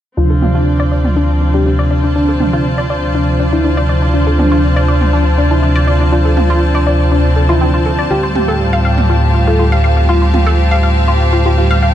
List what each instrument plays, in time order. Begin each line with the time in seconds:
0.17 analog synth bass D2, analog synth pad C3 F3 D4, string section C4, synth arpeggio sound D4, analog synth lead F4, ambient pad F4 C5 D5 A5
0.26 string section F4
0.30 synth arpeggio sound A4
0.42 analog synth lead F4, mid tom
0.50 string section D5
0.55 synth arpeggio sound F4
0.80 synth arpeggio sound D5
0.92 synth arpeggio sound D5
1.04 mid tom
1.16 synth arpeggio sound D4
1.41 synth arpeggio sound D4
1.54 synth arpeggio sound D4, analog synth lead G4
1.66 synth arpeggio sound D4
1.79 synth arpeggio sound D5
1.91 synth arpeggio sound D5
2.04 synth arpeggio sound D4, string section A5
2.16 analog synth lead D4, synth arpeggio sound D4
2.29 synth arpeggio sound A4
2.40 analog synth lead D4, mid tom
2.53 synth arpeggio sound F4
2.78 synth arpeggio sound D5
2.90 synth arpeggio sound D5
3.15 synth arpeggio sound D4
3.40 synth arpeggio sound D4
3.52 synth arpeggio sound D4, analog synth lead E4
3.64 synth arpeggio sound D4
3.77 synth arpeggio sound D5
3.89 synth arpeggio sound D5
4.02 synth arpeggio sound D4
4.14 analog synth pad C3 F3 D4, analog synth lead D4, synth arpeggio sound D4
4.27 synth arpeggio sound A4
4.39 analog synth lead D4, mid tom
4.52 synth arpeggio sound F4
4.76 synth arpeggio sound D5
4.88 synth arpeggio sound D5
5.01 mid tom
5.13 synth arpeggio sound D4
5.38 synth arpeggio sound D4
5.51 synth arpeggio sound D4, analog synth lead E4
5.63 synth arpeggio sound D4
5.76 synth arpeggio sound D5
5.88 synth arpeggio sound D5
6.00 synth arpeggio sound D4
6.12 synth arpeggio sound D4, analog synth lead F4
6.25 synth arpeggio sound A4
6.37 analog synth lead F4, mid tom
6.50 synth arpeggio sound F4
6.75 synth arpeggio sound D5
6.87 synth arpeggio sound D5
7.11 synth arpeggio sound D4
7.36 synth arpeggio sound A4
7.49 analog synth lead E4, synth arpeggio sound F4
7.61 synth arpeggio sound C4
7.74 synth arpeggio sound F4
7.86 synth arpeggio sound A4
7.99 synth arpeggio sound D5
8.11 analog synth bass D2, analog synth pad A2 G3 F4, synth arpeggio sound F4, ambient pad G4 C5 F5, analog synth lead G4
8.23 synth arpeggio sound C5
8.35 analog synth lead G4, mid tom
8.48 synth arpeggio sound A4
8.73 string section G4, synth arpeggio sound F5
8.85 synth arpeggio sound F5
8.98 mid tom
9.10 synth arpeggio sound F4
9.25 string section F5
9.35 synth arpeggio sound F4
9.47 synth arpeggio sound F4, analog synth lead A4
9.59 synth arpeggio sound F4
9.72 synth arpeggio sound F5
9.84 synth arpeggio sound F5
9.97 synth arpeggio sound F4
10.09 synth arpeggio sound F4, analog synth lead F4
10.22 synth arpeggio sound C5
10.34 analog synth lead F4, mid tom
10.46 synth arpeggio sound A4
10.71 synth arpeggio sound F5
10.83 synth arpeggio sound F5
11.08 synth arpeggio sound F4
11.33 synth arpeggio sound F4
11.46 synth arpeggio sound F4, analog synth lead G4
11.58 synth arpeggio sound F4
11.71 synth arpeggio sound F5
11.82 synth arpeggio sound F5